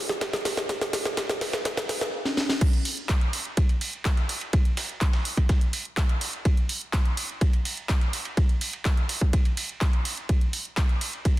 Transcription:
0.09 snare medium
0.09 closed hi-hat soft
0.21 kick loud
0.21 snare loud
0.21 closed hi-hat loud
0.21 ride medium
0.33 snare medium
0.33 snare soft
0.33 closed hi-hat soft
0.45 snare loud
0.45 open hi-hat loud
0.45 ride medium
0.57 snare medium
0.57 closed hi-hat soft
0.57 ride soft
0.69 kick loud
0.69 snare medium
0.69 closed hi-hat medium
0.69 ride medium
0.81 snare medium
0.81 closed hi-hat soft
0.93 snare loud
0.93 open hi-hat loud
0.93 ride medium
1.05 snare medium
1.05 closed hi-hat soft
1.05 ride soft
1.17 kick loud
1.17 snare loud
1.17 closed hi-hat medium
1.17 ride medium
1.29 snare medium
1.29 closed hi-hat soft
1.41 snare loud
1.41 open hi-hat loud
1.41 ride medium
1.53 snare loud
1.53 snare medium
1.53 ride medium
1.65 kick loud
1.65 snare loud
1.65 closed hi-hat loud
1.65 ride medium
1.77 snare loud
1.77 closed hi-hat soft
1.77 ride medium
1.89 snare loud
1.89 open hi-hat loud
1.89 ride medium
2.01 snare medium
2.01 closed hi-hat soft
2.25 snare medium
2.37 snare medium
2.49 snare medium
2.61 kick loud
2.61 closed hi-hat medium
2.61 ride medium
2.61 crash loud
2.73 closed hi-hat soft
2.85 open hi-hat loud
2.85 open hi-hat medium
2.97 closed hi-hat soft
3.09 kick loud
3.09 snare loud
3.09 clap loud
3.09 closed hi-hat loud
3.09 ride medium
3.21 closed hi-hat soft
3.33 open hi-hat loud
3.33 ride medium
3.45 closed hi-hat soft
3.57 kick loud
3.57 closed hi-hat loud
3.57 ride medium
3.69 closed hi-hat soft
3.69 ride soft
3.81 open hi-hat loud
3.81 ride medium
3.93 closed hi-hat soft
4.05 kick loud
4.05 snare loud
4.05 clap loud
4.05 closed hi-hat medium
4.05 ride medium
4.17 snare soft
4.17 closed hi-hat soft
4.29 open hi-hat loud
4.29 ride medium
4.41 closed hi-hat soft
4.41 ride soft
4.53 kick loud
4.53 closed hi-hat medium
4.53 ride loud
4.65 closed hi-hat soft
4.77 snare loud
4.77 open hi-hat loud
4.77 ride medium
4.89 closed hi-hat soft
5.01 kick loud
5.01 clap loud
5.01 closed hi-hat medium
5.01 ride medium
5.13 snare loud
5.13 closed hi-hat soft
5.13 ride medium
5.25 open hi-hat loud
5.37 kick medium
5.37 closed hi-hat soft
5.37 ride medium
5.49 kick loud
5.49 snare loud
5.49 closed hi-hat medium
5.49 ride medium
5.61 closed hi-hat soft
5.73 open hi-hat loud
5.73 ride medium
5.85 closed hi-hat soft
5.97 kick loud
5.97 snare loud
5.97 clap loud
5.97 closed hi-hat loud
5.97 ride medium
6.09 closed hi-hat soft
6.09 ride soft
6.21 open hi-hat loud
6.21 ride medium
6.33 closed hi-hat soft
6.45 kick loud
6.45 closed hi-hat medium
6.45 ride medium
6.57 closed hi-hat soft
6.69 open hi-hat medium
6.69 open hi-hat loud
6.81 closed hi-hat soft
6.93 kick loud
6.93 snare loud
6.93 clap loud
6.93 closed hi-hat medium
6.93 ride medium
7.05 closed hi-hat soft
7.17 open hi-hat loud
7.17 ride medium
7.29 closed hi-hat soft
7.41 kick loud
7.41 closed hi-hat medium
7.41 ride medium
7.53 closed hi-hat soft
7.53 ride soft
7.65 open hi-hat loud
7.65 ride medium
7.77 closed hi-hat soft
7.89 kick loud
7.89 snare loud
7.89 clap loud
7.89 closed hi-hat medium
7.89 ride medium
8.01 snare soft
8.01 closed hi-hat soft
8.13 open hi-hat loud
8.13 ride medium
8.25 closed hi-hat soft
8.25 ride soft
8.37 kick loud
8.37 closed hi-hat medium
8.37 ride medium
8.49 closed hi-hat soft
8.61 open hi-hat loud
8.61 ride medium
8.73 closed hi-hat soft
8.73 ride soft
8.85 kick loud
8.85 snare loud
8.85 clap loud
8.85 closed hi-hat medium
8.85 ride medium
8.97 closed hi-hat soft
9.09 open hi-hat loud
9.09 ride medium
9.21 kick medium
9.21 closed hi-hat soft
9.33 kick loud
9.33 closed hi-hat medium
9.33 ride medium
9.45 closed hi-hat soft
9.45 ride soft
9.57 open hi-hat loud
9.57 ride medium
9.69 closed hi-hat soft
9.81 kick loud
9.81 snare loud
9.81 clap loud
9.81 closed hi-hat medium
9.81 ride medium
9.93 closed hi-hat soft
9.93 ride soft
10.05 open hi-hat loud
10.05 ride medium
10.17 closed hi-hat soft
10.29 kick loud
10.29 closed hi-hat medium
10.29 ride medium
10.41 closed hi-hat soft
10.53 open hi-hat loud
10.53 open hi-hat medium
10.65 closed hi-hat soft
10.77 kick loud
10.77 snare loud
10.77 clap loud
10.77 closed hi-hat medium
10.77 ride medium
10.89 closed hi-hat soft
11.01 open hi-hat loud
11.01 ride medium
11.13 closed hi-hat soft
11.25 kick loud
11.25 closed hi-hat medium
11.25 ride medium

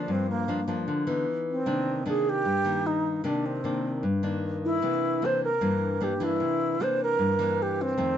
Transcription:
0.00 0.45 F3 medium
0.00 0.45 A#3 medium
0.00 0.13 D4 medium
0.00 0.45 D4 medium
0.08 0.85 G2 medium
0.08 0.29 C4 medium
0.30 0.84 A#3 medium
0.48 0.60 F3 medium
0.48 0.60 A#3 medium
0.48 0.60 D4 medium
0.68 1.04 F3 medium
0.68 1.04 A#3 medium
0.68 1.04 D4 medium
0.88 1.25 D3 medium
1.07 1.63 E3 medium
1.07 1.63 B3 medium
1.07 1.63 D#4 medium
1.50 2.04 C4 medium
1.66 2.43 C3 medium
1.66 2.03 D#3 medium
1.66 2.03 A#3 soft
1.66 2.03 D4 medium
2.06 2.45 D#3 medium
2.06 2.45 A#3 medium
2.06 2.45 D4 medium
2.06 2.31 G#4 medium
2.29 2.88 G4 loud
2.45 3.22 G2 medium
2.65 3.21 D#3 medium
2.65 3.21 A#3 medium
2.86 3.25 D#4 medium
3.24 4.01 C3 medium
3.24 3.60 D#3 medium
3.24 3.61 A#3 medium
3.24 3.61 D4 medium
3.24 3.47 D4 medium
3.46 4.04 C4 medium
3.64 4.03 D#3 medium
3.64 4.03 A#3 medium
3.64 4.04 D4 medium
4.03 4.80 G2 medium
4.23 4.79 D#3 medium
4.23 4.79 A#3 medium
4.23 4.79 D4 medium
4.65 5.26 E4 loud
4.82 5.59 C3 medium
4.82 5.19 E3 medium
4.82 5.19 A#3 medium
4.82 5.19 D4 medium
5.22 5.47 E3 soft
5.22 5.47 A#3 medium
5.22 5.48 D4 medium
5.22 5.43 C5 medium
5.44 6.05 A#4 medium
5.61 6.38 G2 medium
5.61 5.97 E3 medium
5.61 5.98 A#3 medium
5.61 5.98 D4 medium
6.01 6.12 E3 medium
6.01 6.12 A#3 medium
6.01 6.13 D4 medium
6.01 6.25 G4 medium
6.20 6.76 E3 medium
6.20 6.77 A#3 medium
6.20 6.77 D4 medium
6.20 6.84 E4 medium
6.40 7.17 C3 medium
6.80 7.36 E3 medium
6.80 7.36 A#3 medium
6.80 7.36 D4 medium
6.80 7.01 C5 medium
7.03 7.64 A#4 medium
7.19 7.96 G2 medium
7.39 7.95 E3 medium
7.39 7.95 A#3 medium
7.39 7.95 D4 medium
7.62 7.83 G4 medium
7.82 8.18 C4 medium
7.97 8.18 F2 medium
7.97 8.18 D#3 medium
7.97 8.18 A3 medium
7.97 8.18 C4 medium

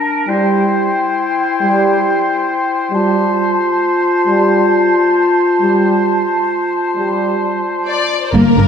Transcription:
0.00 0.24 D4 soft
0.00 0.31 A#4 soft
0.00 0.29 A5 soft
0.27 0.65 G3 medium
0.27 2.90 E4 soft
0.27 2.94 C5 soft
0.27 2.96 G5 soft
1.61 1.98 G3 medium
2.91 3.30 G3 medium
2.91 8.08 F4 medium
2.91 8.08 C5 medium
2.91 8.12 A5 soft
4.26 4.63 G3 medium
5.60 5.97 G3 medium
6.96 7.35 G3 soft
7.87 8.20 D5 medium
8.24 8.35 C5 soft
8.34 8.42 G1 medium
8.34 8.42 G2 medium
8.34 8.55 A#3 medium
8.34 8.68 A#4 medium
8.34 8.68 D5 soft
8.56 8.64 G1 soft
8.56 8.65 G2 soft
8.56 8.65 A#3 soft
8.56 8.65 D4 soft

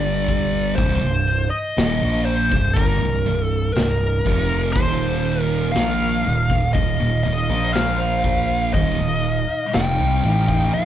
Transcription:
0.00 0.74 G1 medium
0.00 0.77 G2 medium
0.00 0.77 D3 medium
0.00 0.77 G3 medium
0.00 0.74 D5 medium
0.28 kick medium
0.28 open hi-hat medium
0.76 1.01 C1 medium
0.76 1.01 C2 loud
0.76 1.01 G2 medium
0.76 1.48 C5 medium
0.76 kick loud
0.76 open hi-hat medium
1.02 1.49 C1 medium
1.02 1.42 C2 medium
1.02 1.43 G2 medium
1.28 open hi-hat medium
1.50 2.25 D#5 medium
1.77 2.00 D#1 medium
1.77 2.01 D#2 medium
1.77 2.00 A#2 medium
1.77 snare loud
1.77 open hi-hat medium
2.01 2.48 A#1 loud
2.01 2.50 A#2 medium
2.01 2.50 F3 medium
2.01 2.51 A#3 loud
2.25 2.72 C5 medium
2.25 open hi-hat medium
2.51 2.75 C1 medium
2.51 2.76 C2 medium
2.51 2.75 G2 medium
2.51 kick medium
2.74 3.00 G1 medium
2.74 3.00 G2 medium
2.74 3.00 D3 loud
2.74 3.44 A#4 medium
2.74 kick loud
2.74 open hi-hat medium
3.01 3.25 C1 medium
3.01 3.24 C2 medium
3.01 3.25 G2 medium
3.26 3.73 C1 medium
3.26 3.66 C2 medium
3.26 3.66 G2 medium
3.26 open hi-hat soft
3.44 3.72 A4 medium
3.73 4.23 C1 medium
3.73 4.16 C2 medium
3.73 4.16 G2 medium
3.73 4.72 A#4 medium
3.73 snare loud
3.73 open hi-hat medium
4.26 4.72 F1 loud
4.26 4.75 F2 medium
4.26 4.75 C3 medium
4.26 4.75 F3 loud
4.26 kick medium
4.26 open hi-hat medium
4.73 5.74 D#2 medium
4.73 5.74 A#2 loud
4.73 7.47 D#3 medium
4.73 5.74 D#3 medium
4.73 5.42 C5 loud
4.73 10.85 F5 medium
4.73 kick loud
4.73 open hi-hat medium
5.25 open hi-hat medium
5.42 5.70 A#4 loud
5.72 6.22 A#1 medium
5.72 6.24 A#2 medium
5.72 6.73 F5 loud
5.72 open hi-hat medium
5.76 6.24 F3 medium
5.76 6.24 A#3 loud
5.76 snare loud
6.25 6.49 D#1 medium
6.25 6.50 D#2 medium
6.25 6.50 A#2 medium
6.25 open hi-hat soft
6.50 6.73 D#1 medium
6.50 6.74 D#2 medium
6.50 6.75 A#2 medium
6.50 kick medium
6.73 6.98 D#1 medium
6.73 6.99 D#2 medium
6.73 7.00 A#2 medium
6.73 7.22 D#5 medium
6.73 kick loud
6.73 open hi-hat medium
7.00 7.24 D#1 medium
7.00 7.24 D#2 medium
7.00 7.24 A#2 medium
7.23 7.49 D#1 medium
7.23 7.49 D#2 medium
7.23 7.48 A#2 medium
7.23 7.73 D#5 medium
7.23 open hi-hat soft
7.49 8.70 A#1 loud
7.49 8.73 A#2 medium
7.49 8.73 F3 medium
7.49 8.73 A#3 loud
7.49 8.73 C5 medium
7.73 8.73 F5 loud
7.73 snare loud
7.73 open hi-hat medium
8.24 kick medium
8.24 open hi-hat medium
8.74 8.98 D#1 loud
8.74 8.98 D#2 medium
8.74 8.98 A#2 medium
8.74 10.85 D#4 medium
8.74 9.77 D#5 loud
8.74 kick loud
8.74 open hi-hat medium
8.99 9.46 D#1 medium
8.99 9.39 D#2 medium
8.99 9.40 A#2 medium
9.24 open hi-hat medium
9.73 9.97 F1 medium
9.73 9.98 F2 medium
9.73 9.98 C3 medium
9.73 10.76 G5 medium
9.73 snare loud
9.73 open hi-hat medium
9.99 10.22 C2 loud
9.99 10.23 C3 medium
9.99 10.23 G3 medium
10.23 10.70 A1 loud
10.23 10.72 A2 medium
10.23 10.72 E3 loud
10.23 10.73 A3 medium
10.23 open hi-hat medium
10.48 kick medium
10.73 10.85 A#2 medium
10.73 10.85 F3 loud
10.73 10.85 F5 loud

